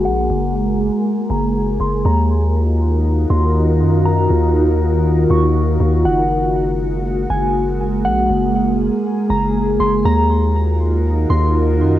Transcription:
<<
  \new Staff \with { instrumentName = "Synth bell" } { \time 4/4 \key ges \major \tempo 4 = 120 ges''2~ ges''8 bes''4 c'''8 | bes''2~ bes''8 c'''8 r4 | bes''2~ bes''8 des'''4. | ges''2~ ges''8 aes''8 r4 |
ges''2~ ges''8 bes''4 c'''8 | bes''2~ bes''8 c'''8 r4 | }
  \new Staff \with { instrumentName = "Ambient pad" } { \time 4/4 \key ges \major << { aes'1 | <ees ees' bes'>1~ | <ees ees' bes'>1 | ges'1 |
aes'1 | <ees ees' bes'>1 | } \\ { <aes bes>1 | <f' ges'>1~ | <f' ges'>1 | <aes bes>1~ |
<aes bes>1 | <f' ges'>1 | } >> }
  \new Staff \with { instrumentName = "808-style bass" } { \clef bass \time 4/4 \key ges \major bes,,8 ges,,4~ ges,,16 r8. ges,,4 ges,,8 | ees,2~ ees,8 ees,4 ges,8~ | ges,8 ees,2 ees,4 ees,8 | ges,,2~ ges,,8 ges,,4. |
bes,,8 ges,,4~ ges,,16 r8. ges,,4 ges,,8 | ees,2~ ees,8 ees,4 ges,8 | }
>>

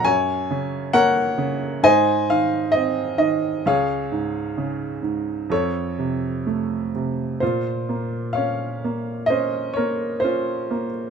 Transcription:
<<
  \new Staff \with { instrumentName = "Upright piano" } { \time 4/4 \key f \phrygian \tempo 4 = 65 << { aes''4 ges''4 aes''8 f''8 ees''8 ees''8 | f''2 des''4. r8 | \key bes \minor c''4 f''4 ees''8 des''8 c''8. r16 | } \\ { des''4 <bes' des''>4 <c'' ees''>2 | <aes' des''>2 a'2 | f'4 des''4 c''8 bes'8 f'8. r16 | } >> }
  \new Staff \with { instrumentName = "Upright piano" } { \clef bass \time 4/4 \key f \phrygian ges,8 des8 bes8 des8 aes,8 ees8 c'8 ees8 | des,8 aes,8 des8 aes,8 f,8 c8 a8 c8 | \key bes \minor bes,8 bes8 des'8 bes8 des'8 bes8 des'8 bes8 | }
>>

